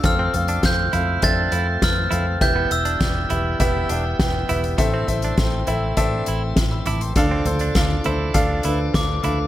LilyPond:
<<
  \new Staff \with { instrumentName = "Glockenspiel" } { \time 4/4 \key a \minor \tempo 4 = 101 f'''4 g'''4 a'''4 f'''4 | g'''8 e'''2. r8 | r1 | r2. d'''4 | }
  \new Staff \with { instrumentName = "Grand piano" } { \time 4/4 \key a \minor << { r1 | r1 | r2. r16 <b'' e'''>16 <a'' d'''>16 <g'' c'''>16~ | <g'' c'''>16 r2. r8. | } \\ { <c' a' f''>8 <c' a' f''>8 <c' a' f''>8 <c' a' f''>8 <c' a' e''>8 <c' a' f''>8 <c' a' b'>8 <c' a' f''>8 | <b g' e''>8 <b g' e''>8 <b g' d''>8 <b g' e''>8 <b g' e''>8 <b g' e''>8 <b g' g''>8 <b g' e''>8 | <c' a' e''>8 <c' a' e''>8 <c' a' g''>8 <c' a' e''>8 <c' a' e''>8 r4. | <d' a' f''>8 <d' a' c''>8 <d' a' f''>8 <d' a' c''>8 <d' a' f''>8 <d' a' b'>8 <d' a' f''>8 <d' a' f''>8 | } >> }
  \new Staff \with { instrumentName = "Grand piano" } { \clef bass \time 4/4 \key a \minor r1 | e4. r2 r8 | a,4. r2 r8 | d4. r2 r8 | }
  \new Staff \with { instrumentName = "Clean electric guitar" } { \time 4/4 \key a \minor r16 c'16 r16 d'16 r8 e'8 d'8 e'16 r8. e'16 r16 | r16 b16 r16 d'16 r8 e'8 e'8 d'16 r8. e'16 r16 | r16 c'16 r16 d'16 r8 e'8 d'8 e'16 r8. e'16 r16 | r16 c'16 r16 d'16 r8 e'8 d'8 e'16 r8. e'16 r16 | }
  \new Staff \with { instrumentName = "Tonewheel organ" } { \time 4/4 \key a \minor <a c' f'>1 | <e e' g' b'>1 | <a c'>1 | <d d' f' a'>1 | }
  \new Staff \with { instrumentName = "Fingered electric bass" } { \clef bass \time 4/4 \key a \minor f,8 f,8 f,8 f,8 f,8 f,8 f,8 f,8 | e,,8 e,,8 e,,8 e,,8 e,,8 e,,8 e,,8 e,,8 | a,,8 a,,8 a,,8 a,,8 a,,8 a,,8 a,,8 a,,8 | d,8 d,8 d,8 d,8 d,8 d,8 d,8 d,8 | }
  \new DrumStaff \with { instrumentName = "Drums" } \drummode { \time 4/4 <hh bd>8 <hh tomfh>16 hh16 <hh bd sn>8 <hh tomfh>8 <hh bd>8 hh8 <hh bd sn>8 <hh tomfh>8 | <hh bd>8 hh16 hh16 <hh bd sn>8 <hh tomfh>8 <hh bd>8 hh8 <hh bd sn>8 <hh tomfh>16 hh16 | <hh bd>8 <hh tomfh>16 hh16 <hh bd sn>8 <hh tomfh>8 <hh bd>8 hh8 <hh bd sn>8 <hh tomfh>16 hh16 | <hh bd>8 <hh tomfh>16 hh16 <hh bd sn>8 <hh tomfh>8 <hh bd>8 hh8 <hh bd sn>8 <hh tomfh>8 | }
>>